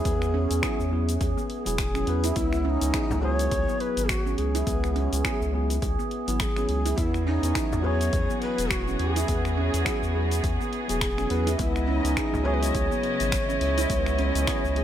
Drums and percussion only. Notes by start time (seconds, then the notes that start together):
0.05 kick, open hi-hat, shaker
0.22 finger snap, shaker
0.51 open hi-hat, shaker
0.63 finger snap, kick, open hi-hat, shaker
0.80 shaker
1.09 open hi-hat, shaker
1.21 kick, open hi-hat, shaker
1.38 shaker
1.50 open hi-hat
1.66 open hi-hat, shaker
1.78 finger snap, kick, open hi-hat, shaker
1.95 finger snap, shaker
2.07 open hi-hat
2.24 open hi-hat, shaker
2.36 kick, open hi-hat, shaker
2.53 finger snap, shaker
2.81 open hi-hat, shaker
2.94 finger snap, kick, open hi-hat, shaker
3.11 frame drum, shaker
3.39 open hi-hat, shaker
3.52 kick, open hi-hat, shaker
3.69 shaker
3.80 open hi-hat
3.97 open hi-hat, shaker
4.09 finger snap, kick, open hi-hat, shaker
4.27 shaker
4.38 open hi-hat
4.55 open hi-hat, shaker
4.67 kick, open hi-hat, shaker
4.84 finger snap, shaker
4.96 open hi-hat
5.13 open hi-hat, shaker
5.25 finger snap, kick, open hi-hat, shaker
5.42 shaker
5.70 open hi-hat, shaker
5.82 kick, open hi-hat, shaker
6.00 shaker
6.11 open hi-hat
6.28 open hi-hat, shaker
6.40 finger snap, kick, open hi-hat, shaker
6.56 finger snap, shaker
6.69 open hi-hat
6.86 open hi-hat, shaker
6.98 kick, open hi-hat, shaker
7.14 finger snap, shaker
7.43 open hi-hat, shaker
7.55 finger snap, kick, open hi-hat, shaker
7.73 frame drum, shaker
8.01 open hi-hat, shaker
8.13 kick, open hi-hat, shaker
8.30 shaker
8.42 open hi-hat
8.58 open hi-hat, shaker
8.71 finger snap, kick, open hi-hat, shaker
8.88 shaker
8.99 open hi-hat
9.16 open hi-hat, shaker
9.28 kick, open hi-hat, shaker
9.45 finger snap, shaker
9.74 open hi-hat, shaker
9.86 finger snap, kick, open hi-hat, shaker
10.03 shaker
10.31 open hi-hat, shaker
10.44 kick, open hi-hat, shaker
10.61 shaker
10.73 open hi-hat
10.89 open hi-hat, shaker
11.01 finger snap, kick, open hi-hat, shaker
11.18 finger snap, shaker
11.30 open hi-hat
11.47 open hi-hat, shaker
11.59 kick, open hi-hat, shaker
11.76 finger snap, shaker
12.05 open hi-hat, shaker
12.17 finger snap, kick, open hi-hat, shaker
12.34 frame drum, shaker
12.63 open hi-hat, shaker
12.75 kick, open hi-hat, shaker
12.92 shaker
13.03 open hi-hat
13.20 open hi-hat, shaker
13.32 finger snap, kick, open hi-hat, shaker
13.50 shaker
13.61 open hi-hat
13.78 open hi-hat, shaker
13.90 kick, open hi-hat, shaker
14.06 finger snap, shaker
14.19 open hi-hat
14.35 open hi-hat, shaker
14.47 finger snap, kick, open hi-hat, shaker
14.65 shaker
14.76 open hi-hat